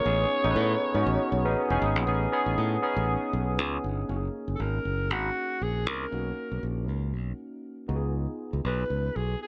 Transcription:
0.00 1.58 C#5 loud
0.05 0.24 A1 medium
0.05 0.35 B3 medium
0.05 0.35 C#4 medium
0.05 0.35 D#4 medium
0.05 0.36 G#4 medium
0.44 0.53 A1 medium
0.44 0.82 B3 medium
0.44 0.83 C#4 medium
0.44 0.83 D#4 medium
0.44 0.50 A4 medium
0.51 0.86 B4 loud
0.56 0.74 A2 loud
0.94 1.03 G#2 medium
0.94 1.33 B3 medium
0.94 1.33 C#4 medium
0.94 1.33 D#4 medium
0.94 1.34 F#4 medium
1.07 1.16 A1 medium
1.32 1.45 B1 medium
1.45 1.54 A1 medium
1.45 1.64 B3 medium
1.45 1.64 C#4 medium
1.45 1.65 D#4 medium
1.45 1.65 G#4 medium
1.70 1.79 E1 medium
1.70 1.99 B3 medium
1.70 2.00 C#4 medium
1.70 2.00 D#4 medium
1.70 2.00 G#4 medium
1.82 1.96 G#1 loud
1.96 2.04 A#1 medium
2.07 2.25 A1 medium
2.07 2.27 B3 medium
2.07 2.28 C#4 medium
2.07 2.28 D#4 medium
2.07 2.28 G#4 medium
2.32 2.72 B3 medium
2.32 2.73 C#4 medium
2.32 2.73 D#4 medium
2.32 2.73 G#4 loud
2.46 2.55 A1 medium
2.58 2.76 A2 loud
2.82 3.61 B3 medium
2.82 3.62 C#4 medium
2.82 3.62 D#4 medium
2.82 3.62 G#4 medium
2.96 3.15 A1 medium
3.33 3.58 B1 medium
3.58 3.77 C#2 medium
3.84 4.03 G1 medium
4.08 4.28 F#1 medium
4.08 6.07 A#3 medium
4.08 6.07 C#4 medium
4.08 6.08 D#4 soft
4.08 4.17 F#4 medium
4.17 6.11 G#4 medium
4.48 4.56 F#1 medium
4.55 4.63 A4 medium
4.60 4.78 G#1 medium
4.60 5.13 A#4 medium
4.85 5.10 F#1 medium
5.10 5.29 G#1 medium
5.10 5.64 F#4 medium
5.61 5.86 A#1 medium
5.61 5.89 G#4 medium
5.86 6.05 C2 medium
5.86 6.63 A#4 medium
6.11 6.30 B1 medium
6.11 7.85 A#3 medium
6.11 7.85 C#4 medium
6.11 7.86 D#4 soft
6.11 7.86 F#4 medium
6.52 6.60 B1 medium
6.63 6.88 A#1 medium
6.88 7.13 C#2 medium
7.13 7.31 B1 medium
7.88 8.26 C#2 medium
7.88 9.47 B3 medium
7.88 9.47 D#4 medium
7.88 9.47 F4 medium
7.88 7.96 F#4 medium
7.96 9.47 G#4 medium
8.53 8.62 C#2 medium
8.65 8.83 B1 medium
8.65 9.18 B4 medium
8.90 9.09 C#2 medium
9.16 9.34 B1 medium
9.16 9.41 G#4 medium
9.42 9.47 G#4 medium

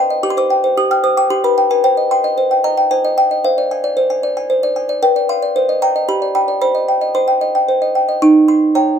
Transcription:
0.00 0.22 C5 medium
0.00 0.18 G5 soft
0.00 0.22 C6 medium
0.10 0.23 D#5 soft
0.23 0.76 G4 medium
0.23 0.30 D6 medium
0.30 0.37 C6 medium
0.37 0.58 C5 soft
0.37 0.75 D6 medium
0.50 0.72 G5 soft
0.64 0.85 C5 soft
0.77 1.29 G4 medium
0.77 0.91 D#6 medium
0.91 1.12 G5 soft
0.91 1.04 F6 medium
1.04 1.25 C5 soft
1.04 1.17 D#6 medium
1.17 1.31 G5 soft
1.17 1.31 D6 medium
1.30 1.83 G4 medium
1.30 1.44 C6 medium
1.44 1.65 B4 soft
1.44 1.58 B5 medium
1.58 1.71 G5 medium
1.71 1.84 B4 soft
1.71 1.84 G#5 medium
1.84 2.36 C5 medium
1.84 2.10 G5 medium
1.97 2.19 D#5 soft
2.11 2.32 G5 soft
2.11 2.62 C6 medium
2.24 2.45 D#5 soft
2.38 2.90 C5 soft
2.51 2.72 G5 soft
2.64 2.85 D#5 soft
2.64 2.90 A#5 medium
2.77 2.99 G5 soft
2.91 3.42 C5 soft
2.91 3.16 G#5 medium
3.05 3.25 D#5 medium
3.18 3.43 G5 medium
3.31 3.44 D#5 soft
3.44 3.96 C5 medium
3.44 4.72 F5 medium
3.58 3.78 D5 medium
3.71 3.92 G#5 medium
3.84 4.05 D5 medium
3.97 4.49 C5 medium
4.10 4.31 G#5 soft
4.23 4.44 D5 medium
4.37 4.57 G#5 medium
4.50 5.00 C5 medium
4.63 4.84 D5 medium
4.76 4.97 G#5 soft
4.89 5.02 D5 soft
5.03 5.53 B4 medium
5.03 5.27 G5 medium
5.16 5.37 D5 soft
5.29 5.50 F5 medium
5.29 5.79 C6 medium
5.42 5.55 D5 soft
5.56 6.07 C5 medium
5.69 5.90 D#5 soft
5.82 6.03 G5 soft
5.82 6.07 A#5 medium
5.96 6.08 D#5 soft
6.09 6.60 G4 medium
6.09 6.34 B5 medium
6.22 6.43 D5 soft
6.35 6.56 G5 soft
6.35 6.60 B5 medium
6.48 6.61 D5 soft
6.62 7.13 C5 medium
6.62 7.13 B5 medium
6.75 6.96 D#5 soft
6.88 7.10 G5 soft
7.01 7.23 D#5 soft
7.15 7.67 C5 soft
7.15 7.66 C6 medium
7.28 7.49 G5 soft
7.41 7.63 D#5 soft
7.55 7.76 G5 soft
7.68 8.20 C5 soft
7.82 8.03 D#5 soft
7.95 8.17 G5 soft
8.09 8.22 D#5 soft
8.22 8.74 D#4 medium
8.22 8.47 C#6 medium
8.48 8.74 C6 medium
8.75 8.99 C#5 soft
8.75 8.99 G5 medium
8.75 8.99 A#5 medium

